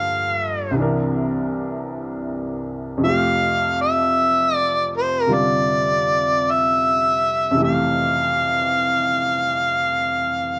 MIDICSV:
0, 0, Header, 1, 3, 480
1, 0, Start_track
1, 0, Key_signature, -1, "major"
1, 0, Tempo, 1134216
1, 1280, Time_signature, 4, 2, 24, 8
1, 4484, End_track
2, 0, Start_track
2, 0, Title_t, "Harmonica"
2, 0, Program_c, 0, 22
2, 0, Note_on_c, 0, 77, 85
2, 318, Note_off_c, 0, 77, 0
2, 1289, Note_on_c, 0, 77, 98
2, 1594, Note_off_c, 0, 77, 0
2, 1615, Note_on_c, 0, 76, 90
2, 1932, Note_off_c, 0, 76, 0
2, 1932, Note_on_c, 0, 74, 90
2, 2072, Note_off_c, 0, 74, 0
2, 2105, Note_on_c, 0, 72, 78
2, 2211, Note_off_c, 0, 72, 0
2, 2211, Note_on_c, 0, 70, 78
2, 2258, Note_on_c, 0, 74, 80
2, 2265, Note_off_c, 0, 70, 0
2, 2753, Note_on_c, 0, 76, 90
2, 2760, Note_off_c, 0, 74, 0
2, 3215, Note_off_c, 0, 76, 0
2, 3232, Note_on_c, 0, 77, 90
2, 4484, Note_off_c, 0, 77, 0
2, 4484, End_track
3, 0, Start_track
3, 0, Title_t, "Upright piano"
3, 0, Program_c, 1, 0
3, 0, Control_c, 1, 64, 127
3, 0, Note_on_c, 1, 43, 43
3, 0, Note_on_c, 1, 50, 42
3, 0, Note_on_c, 1, 53, 37
3, 0, Note_on_c, 1, 58, 41
3, 0, Note_on_c, 1, 69, 48
3, 301, Note_on_c, 1, 36, 52
3, 310, Note_on_c, 1, 48, 47
3, 312, Note_off_c, 1, 43, 0
3, 318, Note_off_c, 1, 50, 0
3, 323, Note_off_c, 1, 53, 0
3, 324, Note_on_c, 1, 52, 46
3, 328, Note_off_c, 1, 58, 0
3, 328, Control_c, 1, 64, 0
3, 334, Note_off_c, 1, 69, 0
3, 338, Note_on_c, 1, 62, 46
3, 346, Note_on_c, 1, 70, 58
3, 402, Control_c, 1, 64, 127
3, 1259, Note_on_c, 1, 41, 50
3, 1261, Note_off_c, 1, 48, 0
3, 1268, Note_on_c, 1, 48, 45
3, 1269, Note_off_c, 1, 36, 0
3, 1281, Note_off_c, 1, 52, 0
3, 1284, Note_on_c, 1, 53, 44
3, 1286, Control_c, 1, 64, 0
3, 1288, Note_off_c, 1, 62, 0
3, 1292, Note_off_c, 1, 70, 0
3, 1293, Note_on_c, 1, 57, 44
3, 1307, Note_on_c, 1, 67, 54
3, 1347, Control_c, 1, 64, 127
3, 2223, Note_off_c, 1, 48, 0
3, 2229, Note_on_c, 1, 48, 40
3, 2236, Note_on_c, 1, 50, 34
3, 2238, Note_on_c, 1, 55, 34
3, 2242, Note_on_c, 1, 65, 45
3, 3172, Note_off_c, 1, 41, 0
3, 3178, Note_on_c, 1, 41, 45
3, 3182, Note_off_c, 1, 48, 0
3, 3188, Note_on_c, 1, 48, 41
3, 3196, Note_off_c, 1, 50, 0
3, 3197, Note_off_c, 1, 55, 0
3, 3199, Note_off_c, 1, 53, 0
3, 3199, Note_off_c, 1, 65, 0
3, 3203, Note_off_c, 1, 57, 0
3, 3203, Note_on_c, 1, 52, 43
3, 3210, Note_off_c, 1, 67, 0
3, 3212, Note_on_c, 1, 57, 40
3, 3224, Note_on_c, 1, 67, 49
3, 4484, Note_off_c, 1, 41, 0
3, 4484, Note_off_c, 1, 48, 0
3, 4484, Note_off_c, 1, 52, 0
3, 4484, Note_off_c, 1, 57, 0
3, 4484, Note_off_c, 1, 67, 0
3, 4484, End_track
0, 0, End_of_file